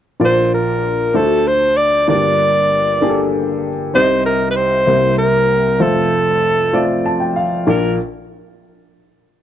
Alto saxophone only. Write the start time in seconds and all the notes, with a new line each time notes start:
0.25 C5
0.54 A#4
1.16 A4
1.48 C5
1.77 D5
2.09 D5
3.95 C5
4.26 A#4
4.51 B4
4.56 C5
5.18 A#4
5.82 A4
7.69 A#4